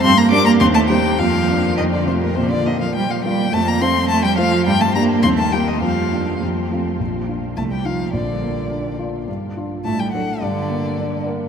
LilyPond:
<<
  \new Staff \with { instrumentName = "Violin" } { \time 2/4 \key bes \major \tempo 4 = 105 c'''16 bes''16 d'''16 bes''16 c'''16 a''16 g''8 | f''4 ees''16 d''16 c''16 bes'16 | c''16 d''16 ees''16 f''16 g''16 f''16 g''8 | a''16 bes''16 c'''8 a''16 g''16 f''8 |
g''16 a''16 bes''8 c'''16 a''16 g''16 ees''16 | f''4 r4 | r4 a''16 g''16 f''8 | d''4. r8 |
r4 a''16 g''16 fis''8 | d''4. r8 | }
  \new Staff \with { instrumentName = "Grand piano" } { \time 2/4 \key bes \major g,8 <g d' bes'>8 ees,8 <g ees' c''>8 | f,8 <bes d' d''>8 f,8 <a f' c''>8 | bes,8 <bes f' d''>4 <bes f' d''>8 | f,8 <a f' c''>4 <a f' c''>8 |
g,8 <bes d' g'>8 ees,8 <bes ees' g'>8 | f,8 <bes d' f'>8 f,8 <a c' f'>8 | bes,,8 <d' f'>8 c,8 <ees' f'>8 | bes,,8 bes8 d'8 f'8 |
g,8 <d' f'>8 a,8 <d' a'>8 | g,8 bes8 d'8 bes'8 | }
  \new Staff \with { instrumentName = "Cello" } { \clef bass \time 2/4 \key bes \major c'16 bes16 d'16 bes16 c'16 a16 g8 | f4 ees16 d16 c16 bes,16 | c16 d16 ees16 f16 g16 f16 g8 | a16 bes16 c'8 a16 g16 f8 |
g16 a16 bes8 c'16 a16 g16 ees16 | f4 r4 | r4 a16 g16 f8 | d4. r8 |
r4 a16 g16 fis8 | d4. r8 | }
>>